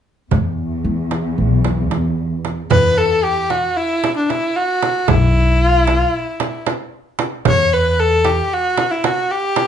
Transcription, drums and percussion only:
0.31 darbuka dum medium
0.31 frame drum medium
0.58 darbuka ka soft
0.71 darbuka ka soft
1.11 darbuka tek medium
1.11 frame drum soft
1.64 darbuka tek medium
1.64 frame drum medium
1.91 darbuka tek medium
1.91 frame drum medium
2.18 darbuka ka soft
2.45 frame drum medium
2.70 darbuka dum medium
2.70 frame drum medium
2.97 darbuka ka soft
3.24 darbuka ka soft
3.50 darbuka tek medium
3.50 frame drum medium
4.04 darbuka tek medium
4.04 frame drum medium
4.30 darbuka tek medium
4.30 frame drum medium
4.56 darbuka ka soft
4.83 frame drum medium
5.08 frame drum medium
5.08 darbuka dum medium
5.87 darbuka tek medium
5.87 frame drum medium
6.40 darbuka tek medium
6.40 frame drum medium
6.66 darbuka tek medium
6.66 frame drum medium
6.94 darbuka ka soft
7.19 darbuka tek medium
7.19 frame drum medium
7.45 frame drum medium
7.45 darbuka dum medium
7.72 darbuka ka soft
8.25 darbuka tek medium
8.25 frame drum medium
8.77 darbuka tek medium
8.77 frame drum medium
9.04 darbuka tek medium
9.04 frame drum medium
9.30 darbuka ka soft
9.56 darbuka tek medium
9.56 frame drum medium

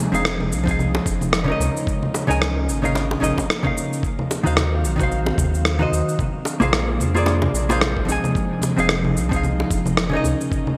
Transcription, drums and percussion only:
0.14 shaker soft
0.25 cross-stick loud
0.25 shaker soft
0.40 low conga medium
0.52 shaker medium
0.67 kick loud
0.67 shaker soft
0.79 low conga medium
0.79 shaker soft
0.95 high bongo medium
1.06 kick loud
1.06 shaker medium
1.21 low conga medium
1.21 shaker soft
1.33 cross-stick loud
1.33 shaker soft
1.60 low conga medium
1.60 shaker medium
1.77 shaker soft
1.87 kick loud
1.87 shaker soft
2.03 low conga medium
2.14 high bongo medium
2.14 shaker medium
2.31 shaker soft
2.42 cross-stick loud
2.42 low conga medium
2.42 shaker soft
2.69 shaker medium
2.84 low conga medium
2.84 shaker soft
2.95 cross-stick soft
2.95 high bongo medium
2.95 shaker soft
3.11 high bongo medium
3.23 low conga medium
3.23 shaker medium
3.38 kick medium
3.38 high bongo medium
3.38 shaker soft
3.50 cross-stick loud
3.50 shaker soft
3.65 kick loud
3.65 low conga medium
3.77 shaker medium
3.93 shaker soft
4.03 kick loud
4.03 shaker soft
4.19 low conga medium
4.31 high bongo medium
4.31 shaker medium
4.46 shaker soft
4.57 cross-stick medium
4.57 low conga medium
4.57 shaker soft
4.85 shaker medium
4.99 kick medium
4.99 low conga medium
4.99 shaker soft
5.12 shaker soft
5.26 high bongo medium
5.38 kick loud
5.38 low conga medium
5.38 shaker medium
5.54 shaker soft
5.65 cross-stick loud
5.65 shaker soft
5.81 low conga medium
5.93 shaker medium
6.09 shaker soft
6.19 kick loud
6.19 low conga medium
6.19 shaker soft
6.45 high bongo medium
6.45 shaker medium
6.61 low conga medium
6.61 shaker soft
6.73 cross-stick loud
6.73 shaker soft
7.00 low conga medium
7.00 shaker medium
7.16 shaker soft
7.26 cross-stick soft
7.26 high bongo medium
7.26 shaker soft
7.42 high bongo medium
7.42 low conga medium
7.55 shaker medium
7.70 high bongo medium
7.70 shaker soft
7.81 cross-stick loud
7.81 low conga medium
7.81 shaker soft
7.97 kick medium
8.09 shaker medium
8.24 low conga medium
8.24 shaker soft
8.35 kick loud
8.35 shaker soft
8.62 high bongo medium
8.62 low conga medium
8.62 shaker medium
8.78 shaker soft
8.89 cross-stick medium
8.89 shaker soft
9.05 low conga medium
9.17 shaker medium
9.32 kick loud
9.32 shaker soft
9.43 low conga medium
9.43 shaker soft
9.60 high bongo medium
9.71 kick loud
9.71 shaker medium
9.86 low conga medium
9.86 shaker soft
9.97 cross-stick loud
9.97 shaker soft
10.24 low conga medium
10.24 shaker medium
10.41 shaker soft
10.52 kick loud
10.52 shaker soft
10.67 low conga medium

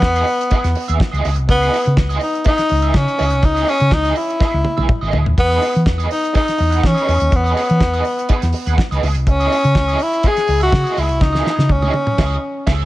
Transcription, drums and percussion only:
0.02 kick loud
0.02 snare loud
0.15 closed hi-hat medium
0.27 open hi-hat medium
0.41 closed hi-hat medium
0.51 kick loud
0.51 closed hi-hat medium
0.64 snare soft
0.64 closed hi-hat medium
0.75 open hi-hat medium
0.88 closed hi-hat medium
1.00 kick loud
1.00 snare loud
1.14 closed hi-hat medium
1.25 open hi-hat medium
1.36 closed hi-hat medium
1.49 kick loud
1.49 closed hi-hat medium
1.63 closed hi-hat soft
1.74 open hi-hat medium
1.86 closed hi-hat medium
1.97 kick loud
1.97 snare loud
2.10 closed hi-hat medium
2.21 open hi-hat medium
2.35 closed hi-hat soft
2.44 kick loud
2.44 closed hi-hat medium
2.58 snare soft
2.58 closed hi-hat medium
2.69 open hi-hat medium
2.82 closed hi-hat medium
2.94 kick loud
2.94 snare loud
3.08 closed hi-hat soft
3.19 open hi-hat medium
3.30 closed hi-hat medium
3.43 kick loud
3.43 closed hi-hat medium
3.57 closed hi-hat soft
3.68 open hi-hat medium
3.80 closed hi-hat medium
3.91 kick loud
3.91 snare loud
4.05 closed hi-hat medium
4.16 open hi-hat medium
4.30 closed hi-hat medium
4.40 kick loud
4.40 snare medium
4.65 high tom medium
4.78 high tom medium
4.89 kick loud
4.89 mid tom loud
5.13 floor tom loud
5.26 floor tom loud
5.38 kick loud
5.38 closed hi-hat medium
5.52 closed hi-hat soft
5.62 open hi-hat medium
5.75 closed hi-hat medium
5.86 kick loud
5.86 snare loud
6.00 closed hi-hat medium
6.11 open hi-hat medium
6.25 closed hi-hat medium
6.35 kick loud
6.35 closed hi-hat medium
6.48 snare soft
6.48 closed hi-hat medium
6.58 open hi-hat medium
6.72 closed hi-hat medium
6.83 kick loud
6.83 snare loud
6.98 closed hi-hat medium
7.09 open hi-hat medium
7.20 closed hi-hat medium
7.32 kick loud
7.32 closed hi-hat medium
7.46 closed hi-hat soft
7.57 open hi-hat medium
7.70 closed hi-hat medium
7.81 kick loud
7.81 snare loud
7.94 closed hi-hat soft
8.05 open hi-hat medium
8.19 closed hi-hat medium
8.29 kick loud
8.29 closed hi-hat medium
8.42 snare soft
8.42 closed hi-hat medium
8.53 open hi-hat medium
8.66 closed hi-hat medium
8.78 kick loud
8.78 snare loud
8.92 closed hi-hat soft
9.03 open hi-hat medium
9.15 closed hi-hat medium
9.27 kick loud
9.27 closed hi-hat medium
9.40 closed hi-hat soft
9.52 open hi-hat medium
9.64 closed hi-hat medium
9.75 kick loud
9.75 snare loud
9.89 closed hi-hat medium
10.00 open hi-hat medium
10.13 closed hi-hat medium
10.23 kick loud
10.23 closed hi-hat medium
10.37 snare soft
10.37 closed hi-hat medium
10.47 open hi-hat medium
10.61 closed hi-hat medium
10.72 kick loud
10.72 snare loud
10.87 closed hi-hat soft
10.97 open hi-hat medium
11.09 closed hi-hat medium
11.21 kick loud
11.21 snare medium
11.35 snare medium
11.46 snare medium
11.59 snare medium
11.69 kick loud
11.69 high tom medium
11.82 high tom medium
11.94 high tom medium
12.07 mid tom medium
12.18 kick loud
12.18 snare loud
12.18 crash medium
12.67 kick loud
12.67 snare loud
12.67 crash medium

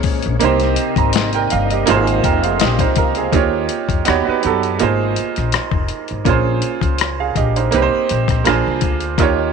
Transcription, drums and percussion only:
0.03 kick medium
0.03 open hi-hat soft
0.23 closed hi-hat soft
0.41 closed hi-hat medium
0.60 snare soft
0.60 closed hi-hat soft
0.76 closed hi-hat medium
0.96 kick medium
0.96 closed hi-hat soft
1.13 snare loud
1.13 closed hi-hat medium
1.33 closed hi-hat medium
1.50 closed hi-hat medium
1.70 closed hi-hat medium
1.87 closed hi-hat loud
2.07 closed hi-hat medium
2.24 kick medium
2.24 closed hi-hat medium
2.44 closed hi-hat medium
2.60 snare loud
2.60 closed hi-hat medium
2.79 kick medium
2.79 closed hi-hat medium
2.96 kick medium
2.96 closed hi-hat medium
3.15 closed hi-hat soft
3.33 kick medium
3.33 closed hi-hat medium
3.69 closed hi-hat medium
3.89 kick medium
3.89 closed hi-hat soft
4.05 cross-stick loud
4.05 closed hi-hat medium
4.43 closed hi-hat medium
4.63 closed hi-hat soft
4.79 closed hi-hat medium
5.16 closed hi-hat medium
5.36 cross-stick soft
5.36 closed hi-hat soft
5.52 cross-stick loud
5.52 closed hi-hat medium
5.71 kick medium
5.88 closed hi-hat medium
6.08 closed hi-hat soft
6.25 kick loud
6.25 closed hi-hat medium
6.62 closed hi-hat medium
6.81 kick medium
6.81 closed hi-hat soft
6.98 cross-stick loud
6.98 closed hi-hat medium
7.36 kick medium
7.36 closed hi-hat medium
7.56 closed hi-hat soft
7.72 closed hi-hat medium
8.09 closed hi-hat medium
8.28 kick medium
8.28 cross-stick soft
8.28 closed hi-hat soft
8.45 cross-stick loud
8.45 closed hi-hat medium
8.81 kick medium
8.81 closed hi-hat medium
9.00 closed hi-hat soft
9.18 kick loud
9.18 closed hi-hat medium

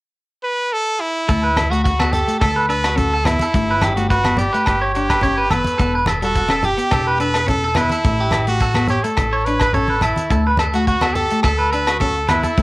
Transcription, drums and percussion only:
1.29 kick medium
1.29 closed hi-hat soft
1.57 cross-stick medium
1.57 closed hi-hat soft
1.57 high conga medium
1.57 low conga medium
1.57 low agogo medium
1.73 closed hi-hat soft
1.85 kick medium
1.85 closed hi-hat soft
2.00 cross-stick medium
2.00 high conga medium
2.00 low agogo medium
2.13 closed hi-hat soft
2.13 low conga medium
2.28 closed hi-hat soft
2.41 kick medium
2.41 cross-stick medium
2.41 closed hi-hat soft
2.41 low agogo medium
2.70 closed hi-hat soft
2.84 cross-stick medium
2.84 closed hi-hat soft
2.84 low agogo medium
2.97 kick medium
2.97 closed hi-hat soft
2.97 low conga medium
3.25 cross-stick medium
3.25 closed hi-hat soft
3.25 high conga medium
3.25 low conga medium
3.25 low agogo medium
3.39 closed hi-hat soft
3.39 high conga medium
3.54 kick medium
3.54 closed hi-hat soft
3.81 cross-stick medium
3.81 closed hi-hat soft
3.81 high conga medium
3.81 low conga medium
3.81 low agogo medium
3.97 closed hi-hat soft
4.10 kick medium
4.10 closed hi-hat soft
4.25 cross-stick medium
4.25 high conga medium
4.25 low agogo medium
4.37 closed hi-hat soft
4.37 low conga medium
4.54 closed hi-hat soft
4.66 kick medium
4.66 cross-stick medium
4.66 closed hi-hat soft
4.66 low agogo medium
4.95 closed hi-hat soft
5.10 kick medium
5.10 cross-stick medium
5.10 closed hi-hat soft
5.10 low agogo medium
5.21 kick medium
5.21 closed hi-hat soft
5.21 low conga medium
5.51 closed hi-hat soft
5.51 high conga medium
5.51 low conga medium
5.51 low agogo medium
5.64 closed hi-hat soft
5.64 high conga medium
5.80 kick medium
5.80 closed hi-hat soft
6.06 cross-stick medium
6.06 closed hi-hat soft
6.06 high conga medium
6.06 low conga medium
6.06 low agogo medium
6.22 closed hi-hat soft
6.35 kick medium
6.35 closed hi-hat soft
6.49 cross-stick medium
6.49 high conga medium
6.49 low agogo medium
6.63 closed hi-hat soft
6.63 low conga medium
6.78 closed hi-hat soft
6.91 kick medium
6.91 cross-stick medium
6.91 closed hi-hat soft
6.91 low agogo medium
7.20 closed hi-hat soft
7.34 cross-stick medium
7.34 closed hi-hat soft
7.34 low agogo medium
7.47 kick medium
7.47 closed hi-hat soft
7.47 low conga medium
7.75 cross-stick medium
7.75 closed hi-hat soft
7.75 high conga medium
7.75 low conga medium
7.75 low agogo medium
7.89 closed hi-hat soft
7.89 high conga medium
8.04 kick medium
8.04 closed hi-hat soft
8.31 cross-stick medium
8.31 closed hi-hat soft
8.31 high conga medium
8.31 low conga medium
8.31 low agogo medium
8.47 closed hi-hat soft
8.60 kick medium
8.60 closed hi-hat soft
8.74 cross-stick medium
8.74 high conga medium
8.74 low agogo medium
8.88 closed hi-hat soft
8.88 low conga medium
9.04 closed hi-hat soft
9.17 kick medium
9.17 cross-stick medium
9.17 closed hi-hat soft
9.17 low agogo medium
9.46 closed hi-hat soft
9.60 kick medium
9.60 cross-stick medium
9.60 closed hi-hat soft
9.60 low agogo medium
9.73 kick medium
9.73 closed hi-hat soft
9.73 low conga soft
9.88 high conga medium
10.01 closed hi-hat soft
10.01 high conga medium
10.01 low conga medium
10.01 low agogo medium
10.16 closed hi-hat soft
10.16 high conga medium
10.30 kick medium
10.30 closed hi-hat soft
10.57 cross-stick medium
10.57 closed hi-hat soft
10.57 high conga medium
10.57 low conga medium
10.57 low agogo medium
10.73 closed hi-hat soft
10.87 kick medium
10.87 closed hi-hat soft
11.01 cross-stick medium
11.01 high conga medium
11.01 low agogo medium
11.15 closed hi-hat soft
11.15 low conga medium
11.30 closed hi-hat soft
11.43 kick medium
11.43 cross-stick medium
11.43 closed hi-hat soft
11.43 low agogo medium
11.73 closed hi-hat soft
11.87 cross-stick medium
11.87 closed hi-hat soft
11.87 low agogo medium
12.00 kick medium
12.00 closed hi-hat soft
12.00 low conga medium
12.29 cross-stick medium
12.29 closed hi-hat soft
12.29 high conga medium
12.29 low conga medium
12.29 low agogo medium
12.43 closed hi-hat soft
12.43 high conga medium
12.57 kick medium
12.57 closed hi-hat medium

